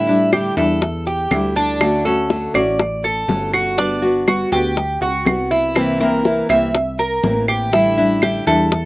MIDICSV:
0, 0, Header, 1, 6, 480
1, 0, Start_track
1, 0, Key_signature, 2, "major"
1, 0, Tempo, 494234
1, 1759, Time_signature, 4, 2, 24, 8
1, 8598, End_track
2, 0, Start_track
2, 0, Title_t, "Cuban tres"
2, 0, Program_c, 0, 25
2, 0, Note_on_c, 0, 64, 70
2, 304, Note_off_c, 0, 64, 0
2, 317, Note_on_c, 0, 67, 66
2, 550, Note_off_c, 0, 67, 0
2, 560, Note_on_c, 0, 69, 65
2, 1025, Note_off_c, 0, 69, 0
2, 1038, Note_on_c, 0, 67, 69
2, 1504, Note_off_c, 0, 67, 0
2, 1517, Note_on_c, 0, 62, 82
2, 1983, Note_off_c, 0, 62, 0
2, 1993, Note_on_c, 0, 69, 66
2, 2461, Note_off_c, 0, 69, 0
2, 2474, Note_on_c, 0, 74, 67
2, 2942, Note_off_c, 0, 74, 0
2, 2954, Note_on_c, 0, 69, 66
2, 3421, Note_off_c, 0, 69, 0
2, 3433, Note_on_c, 0, 66, 73
2, 3668, Note_off_c, 0, 66, 0
2, 3670, Note_on_c, 0, 62, 69
2, 4139, Note_off_c, 0, 62, 0
2, 4153, Note_on_c, 0, 66, 65
2, 4388, Note_off_c, 0, 66, 0
2, 4393, Note_on_c, 0, 67, 67
2, 4860, Note_off_c, 0, 67, 0
2, 4873, Note_on_c, 0, 66, 68
2, 5340, Note_off_c, 0, 66, 0
2, 5351, Note_on_c, 0, 64, 82
2, 5819, Note_off_c, 0, 64, 0
2, 5833, Note_on_c, 0, 70, 72
2, 6300, Note_off_c, 0, 70, 0
2, 6309, Note_on_c, 0, 76, 63
2, 6778, Note_off_c, 0, 76, 0
2, 6789, Note_on_c, 0, 70, 73
2, 7257, Note_off_c, 0, 70, 0
2, 7268, Note_on_c, 0, 67, 70
2, 7504, Note_off_c, 0, 67, 0
2, 7507, Note_on_c, 0, 64, 74
2, 7976, Note_off_c, 0, 64, 0
2, 7989, Note_on_c, 0, 67, 60
2, 8223, Note_off_c, 0, 67, 0
2, 8227, Note_on_c, 0, 69, 66
2, 8598, Note_off_c, 0, 69, 0
2, 8598, End_track
3, 0, Start_track
3, 0, Title_t, "Nylon-string guitar"
3, 0, Program_c, 1, 24
3, 70, Note_on_c, 1, 64, 69
3, 85, Note_on_c, 1, 62, 68
3, 94, Note_on_c, 1, 55, 59
3, 305, Note_off_c, 1, 64, 0
3, 310, Note_off_c, 1, 55, 0
3, 312, Note_off_c, 1, 62, 0
3, 313, Note_on_c, 1, 50, 47
3, 322, Note_on_c, 1, 55, 49
3, 330, Note_on_c, 1, 62, 52
3, 335, Note_on_c, 1, 64, 52
3, 543, Note_off_c, 1, 64, 0
3, 546, Note_off_c, 1, 50, 0
3, 551, Note_off_c, 1, 55, 0
3, 554, Note_on_c, 1, 64, 69
3, 555, Note_off_c, 1, 62, 0
3, 567, Note_on_c, 1, 62, 61
3, 575, Note_on_c, 1, 55, 53
3, 787, Note_off_c, 1, 64, 0
3, 793, Note_off_c, 1, 62, 0
3, 794, Note_off_c, 1, 55, 0
3, 1279, Note_on_c, 1, 50, 47
3, 1285, Note_on_c, 1, 55, 50
3, 1293, Note_on_c, 1, 62, 49
3, 1298, Note_on_c, 1, 64, 51
3, 1741, Note_off_c, 1, 50, 0
3, 1752, Note_off_c, 1, 55, 0
3, 1753, Note_on_c, 1, 50, 78
3, 1756, Note_off_c, 1, 62, 0
3, 1759, Note_off_c, 1, 64, 0
3, 1763, Note_on_c, 1, 57, 69
3, 1769, Note_on_c, 1, 61, 77
3, 1777, Note_on_c, 1, 66, 83
3, 1985, Note_off_c, 1, 66, 0
3, 1986, Note_off_c, 1, 50, 0
3, 1991, Note_off_c, 1, 57, 0
3, 1994, Note_off_c, 1, 61, 0
3, 1996, Note_on_c, 1, 66, 69
3, 2009, Note_on_c, 1, 61, 59
3, 2018, Note_on_c, 1, 57, 57
3, 2227, Note_off_c, 1, 57, 0
3, 2228, Note_off_c, 1, 66, 0
3, 2232, Note_on_c, 1, 50, 51
3, 2234, Note_off_c, 1, 61, 0
3, 2239, Note_on_c, 1, 57, 47
3, 2246, Note_on_c, 1, 61, 53
3, 2254, Note_on_c, 1, 66, 50
3, 2460, Note_off_c, 1, 66, 0
3, 2466, Note_off_c, 1, 50, 0
3, 2469, Note_off_c, 1, 57, 0
3, 2471, Note_on_c, 1, 66, 74
3, 2473, Note_off_c, 1, 61, 0
3, 2483, Note_on_c, 1, 61, 63
3, 2491, Note_on_c, 1, 57, 55
3, 2705, Note_off_c, 1, 66, 0
3, 2706, Note_off_c, 1, 57, 0
3, 2709, Note_off_c, 1, 61, 0
3, 3191, Note_on_c, 1, 50, 45
3, 3200, Note_on_c, 1, 57, 48
3, 3206, Note_on_c, 1, 61, 51
3, 3214, Note_on_c, 1, 66, 49
3, 3665, Note_off_c, 1, 50, 0
3, 3668, Note_off_c, 1, 57, 0
3, 3672, Note_off_c, 1, 61, 0
3, 3672, Note_on_c, 1, 55, 67
3, 3676, Note_off_c, 1, 66, 0
3, 3682, Note_on_c, 1, 59, 73
3, 3692, Note_on_c, 1, 66, 79
3, 3895, Note_off_c, 1, 66, 0
3, 3905, Note_off_c, 1, 55, 0
3, 3906, Note_on_c, 1, 66, 72
3, 3910, Note_off_c, 1, 59, 0
3, 3930, Note_on_c, 1, 59, 55
3, 4142, Note_off_c, 1, 66, 0
3, 4145, Note_off_c, 1, 59, 0
3, 4145, Note_on_c, 1, 55, 48
3, 4156, Note_on_c, 1, 59, 47
3, 4167, Note_on_c, 1, 66, 50
3, 4377, Note_off_c, 1, 66, 0
3, 4381, Note_off_c, 1, 55, 0
3, 4387, Note_off_c, 1, 59, 0
3, 4389, Note_on_c, 1, 66, 69
3, 4411, Note_on_c, 1, 59, 58
3, 4623, Note_off_c, 1, 66, 0
3, 4627, Note_off_c, 1, 59, 0
3, 5106, Note_on_c, 1, 55, 50
3, 5120, Note_on_c, 1, 59, 50
3, 5129, Note_on_c, 1, 66, 55
3, 5581, Note_off_c, 1, 55, 0
3, 5584, Note_on_c, 1, 48, 77
3, 5588, Note_off_c, 1, 59, 0
3, 5590, Note_on_c, 1, 52, 73
3, 5593, Note_off_c, 1, 66, 0
3, 5596, Note_on_c, 1, 58, 78
3, 5599, Note_on_c, 1, 60, 80
3, 5604, Note_on_c, 1, 64, 80
3, 5817, Note_off_c, 1, 64, 0
3, 5820, Note_off_c, 1, 48, 0
3, 5823, Note_off_c, 1, 52, 0
3, 5825, Note_off_c, 1, 60, 0
3, 5826, Note_off_c, 1, 58, 0
3, 5828, Note_on_c, 1, 64, 68
3, 5836, Note_on_c, 1, 60, 64
3, 5844, Note_on_c, 1, 58, 65
3, 5850, Note_on_c, 1, 52, 58
3, 6053, Note_off_c, 1, 52, 0
3, 6059, Note_off_c, 1, 58, 0
3, 6062, Note_off_c, 1, 64, 0
3, 6064, Note_on_c, 1, 52, 51
3, 6066, Note_off_c, 1, 60, 0
3, 6071, Note_on_c, 1, 58, 46
3, 6079, Note_on_c, 1, 60, 50
3, 6085, Note_on_c, 1, 64, 54
3, 6295, Note_off_c, 1, 64, 0
3, 6300, Note_off_c, 1, 52, 0
3, 6301, Note_off_c, 1, 60, 0
3, 6303, Note_off_c, 1, 58, 0
3, 6307, Note_on_c, 1, 64, 66
3, 6313, Note_on_c, 1, 60, 63
3, 6321, Note_on_c, 1, 58, 59
3, 6328, Note_on_c, 1, 52, 56
3, 6539, Note_off_c, 1, 52, 0
3, 6540, Note_off_c, 1, 58, 0
3, 6541, Note_off_c, 1, 64, 0
3, 6544, Note_off_c, 1, 60, 0
3, 7022, Note_on_c, 1, 52, 48
3, 7029, Note_on_c, 1, 58, 51
3, 7036, Note_on_c, 1, 60, 50
3, 7042, Note_on_c, 1, 64, 50
3, 7493, Note_off_c, 1, 52, 0
3, 7497, Note_on_c, 1, 50, 68
3, 7502, Note_off_c, 1, 58, 0
3, 7506, Note_off_c, 1, 60, 0
3, 7506, Note_on_c, 1, 55, 73
3, 7509, Note_off_c, 1, 64, 0
3, 7512, Note_on_c, 1, 62, 75
3, 7521, Note_on_c, 1, 64, 83
3, 7734, Note_off_c, 1, 64, 0
3, 7736, Note_off_c, 1, 50, 0
3, 7741, Note_off_c, 1, 55, 0
3, 7744, Note_off_c, 1, 62, 0
3, 7745, Note_on_c, 1, 64, 70
3, 7758, Note_on_c, 1, 62, 61
3, 7769, Note_on_c, 1, 55, 55
3, 7980, Note_off_c, 1, 64, 0
3, 7982, Note_off_c, 1, 55, 0
3, 7984, Note_on_c, 1, 50, 48
3, 7987, Note_off_c, 1, 62, 0
3, 7994, Note_on_c, 1, 55, 55
3, 8000, Note_on_c, 1, 62, 54
3, 8004, Note_on_c, 1, 64, 50
3, 8216, Note_off_c, 1, 64, 0
3, 8220, Note_off_c, 1, 50, 0
3, 8225, Note_off_c, 1, 55, 0
3, 8228, Note_off_c, 1, 62, 0
3, 8228, Note_on_c, 1, 64, 67
3, 8238, Note_on_c, 1, 62, 60
3, 8248, Note_on_c, 1, 55, 57
3, 8461, Note_off_c, 1, 55, 0
3, 8462, Note_off_c, 1, 64, 0
3, 8467, Note_off_c, 1, 62, 0
3, 8598, End_track
4, 0, Start_track
4, 0, Title_t, "Analog synth bass"
4, 0, Program_c, 2, 38
4, 0, Note_on_c, 2, 45, 88
4, 493, Note_off_c, 2, 45, 0
4, 553, Note_on_c, 2, 40, 97
4, 1237, Note_off_c, 2, 40, 0
4, 1270, Note_on_c, 2, 38, 86
4, 2411, Note_off_c, 2, 38, 0
4, 2469, Note_on_c, 2, 33, 96
4, 3154, Note_off_c, 2, 33, 0
4, 3187, Note_on_c, 2, 31, 87
4, 4329, Note_off_c, 2, 31, 0
4, 4390, Note_on_c, 2, 38, 98
4, 4839, Note_off_c, 2, 38, 0
4, 4867, Note_on_c, 2, 37, 73
4, 5094, Note_off_c, 2, 37, 0
4, 5103, Note_on_c, 2, 36, 85
4, 6246, Note_off_c, 2, 36, 0
4, 6305, Note_on_c, 2, 36, 93
4, 6991, Note_off_c, 2, 36, 0
4, 7024, Note_on_c, 2, 33, 92
4, 8167, Note_off_c, 2, 33, 0
4, 8224, Note_on_c, 2, 40, 95
4, 8598, Note_off_c, 2, 40, 0
4, 8598, End_track
5, 0, Start_track
5, 0, Title_t, "Muted nylon-string guitar strokes"
5, 801, Note_on_c, 9, 29, 57
5, 898, Note_off_c, 9, 29, 0
5, 2713, Note_on_c, 9, 29, 60
5, 2810, Note_off_c, 9, 29, 0
5, 4634, Note_on_c, 9, 29, 55
5, 4732, Note_off_c, 9, 29, 0
5, 6548, Note_on_c, 9, 29, 59
5, 6645, Note_off_c, 9, 29, 0
5, 8468, Note_on_c, 9, 29, 62
5, 8565, Note_off_c, 9, 29, 0
5, 8598, End_track
6, 0, Start_track
6, 0, Title_t, "Drums"
6, 317, Note_on_c, 9, 60, 56
6, 319, Note_on_c, 9, 75, 62
6, 414, Note_off_c, 9, 60, 0
6, 416, Note_off_c, 9, 75, 0
6, 554, Note_on_c, 9, 60, 33
6, 651, Note_off_c, 9, 60, 0
6, 796, Note_on_c, 9, 60, 67
6, 893, Note_off_c, 9, 60, 0
6, 1035, Note_on_c, 9, 60, 33
6, 1132, Note_off_c, 9, 60, 0
6, 1275, Note_on_c, 9, 60, 34
6, 1275, Note_on_c, 9, 61, 77
6, 1277, Note_on_c, 9, 75, 63
6, 1372, Note_off_c, 9, 60, 0
6, 1372, Note_off_c, 9, 61, 0
6, 1374, Note_off_c, 9, 75, 0
6, 1513, Note_on_c, 9, 60, 32
6, 1610, Note_off_c, 9, 60, 0
6, 1756, Note_on_c, 9, 60, 66
6, 1756, Note_on_c, 9, 75, 62
6, 1853, Note_off_c, 9, 60, 0
6, 1853, Note_off_c, 9, 75, 0
6, 2235, Note_on_c, 9, 60, 60
6, 2332, Note_off_c, 9, 60, 0
6, 2475, Note_on_c, 9, 60, 34
6, 2476, Note_on_c, 9, 75, 63
6, 2572, Note_off_c, 9, 60, 0
6, 2573, Note_off_c, 9, 75, 0
6, 2714, Note_on_c, 9, 60, 72
6, 2812, Note_off_c, 9, 60, 0
6, 2960, Note_on_c, 9, 60, 35
6, 3057, Note_off_c, 9, 60, 0
6, 3196, Note_on_c, 9, 60, 32
6, 3196, Note_on_c, 9, 61, 73
6, 3293, Note_off_c, 9, 60, 0
6, 3293, Note_off_c, 9, 61, 0
6, 3433, Note_on_c, 9, 75, 63
6, 3434, Note_on_c, 9, 60, 33
6, 3531, Note_off_c, 9, 60, 0
6, 3531, Note_off_c, 9, 75, 0
6, 3675, Note_on_c, 9, 60, 67
6, 3772, Note_off_c, 9, 60, 0
6, 4154, Note_on_c, 9, 75, 63
6, 4156, Note_on_c, 9, 60, 57
6, 4251, Note_off_c, 9, 75, 0
6, 4253, Note_off_c, 9, 60, 0
6, 4394, Note_on_c, 9, 60, 35
6, 4492, Note_off_c, 9, 60, 0
6, 4633, Note_on_c, 9, 60, 68
6, 4731, Note_off_c, 9, 60, 0
6, 4873, Note_on_c, 9, 60, 33
6, 4970, Note_off_c, 9, 60, 0
6, 5112, Note_on_c, 9, 60, 32
6, 5112, Note_on_c, 9, 61, 82
6, 5119, Note_on_c, 9, 75, 65
6, 5209, Note_off_c, 9, 60, 0
6, 5209, Note_off_c, 9, 61, 0
6, 5216, Note_off_c, 9, 75, 0
6, 5351, Note_on_c, 9, 60, 30
6, 5448, Note_off_c, 9, 60, 0
6, 5590, Note_on_c, 9, 75, 63
6, 5594, Note_on_c, 9, 60, 65
6, 5687, Note_off_c, 9, 75, 0
6, 5692, Note_off_c, 9, 60, 0
6, 6071, Note_on_c, 9, 60, 57
6, 6168, Note_off_c, 9, 60, 0
6, 6310, Note_on_c, 9, 60, 33
6, 6312, Note_on_c, 9, 75, 61
6, 6407, Note_off_c, 9, 60, 0
6, 6409, Note_off_c, 9, 75, 0
6, 6552, Note_on_c, 9, 60, 64
6, 6649, Note_off_c, 9, 60, 0
6, 6792, Note_on_c, 9, 60, 34
6, 6889, Note_off_c, 9, 60, 0
6, 7027, Note_on_c, 9, 60, 30
6, 7027, Note_on_c, 9, 61, 78
6, 7124, Note_off_c, 9, 60, 0
6, 7124, Note_off_c, 9, 61, 0
6, 7268, Note_on_c, 9, 75, 61
6, 7270, Note_on_c, 9, 60, 33
6, 7365, Note_off_c, 9, 75, 0
6, 7367, Note_off_c, 9, 60, 0
6, 7509, Note_on_c, 9, 60, 66
6, 7606, Note_off_c, 9, 60, 0
6, 7983, Note_on_c, 9, 75, 58
6, 7990, Note_on_c, 9, 60, 53
6, 8080, Note_off_c, 9, 75, 0
6, 8087, Note_off_c, 9, 60, 0
6, 8229, Note_on_c, 9, 60, 32
6, 8326, Note_off_c, 9, 60, 0
6, 8468, Note_on_c, 9, 60, 67
6, 8565, Note_off_c, 9, 60, 0
6, 8598, End_track
0, 0, End_of_file